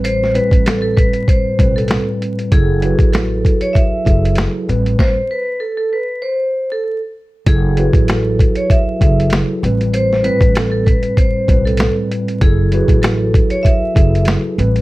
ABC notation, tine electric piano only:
X:1
M:4/4
L:1/8
Q:"Swing 16ths" 1/4=97
K:F#m
V:1 name="Tine electric piano"
[A,,=G,=CB] [A,,G,CB]3 z [A,,G,CB]2 z | [F,EGA] [F,EFB]3 z [F,EGA]2 [A,,=G,=CB]- | [A,,=G,=CB] z6 z | [F,EGA] [F,EFB]3 z [F,EGA]2 [A,,=G,=CB]- |
[A,,=G,=CB] [A,,G,CB]3 z [A,,G,CB]2 z | [F,EGA] [F,EFB]3 z [F,EGA]2 [A,,=G,=CB] |]